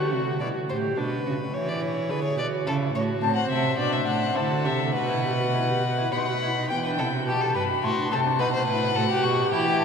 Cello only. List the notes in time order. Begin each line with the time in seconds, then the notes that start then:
Already playing: D3
0.12 C3
0.40 B2
0.69 A2
0.97 B2
1.25 C#3
1.53 E3
2.09 D3
2.37 B2
2.66 C#3
2.94 A2
3.22 A2
3.50 C3
3.78 B2
4.07 A2
4.36 D3
4.65 C3
4.95 B2
6.12 B2
6.71 E3
6.99 C3
7.27 B2
7.56 G2
7.84 A2
8.12 C3
8.40 B2
8.68 A2
8.96 A2
9.24 B2
9.52 E3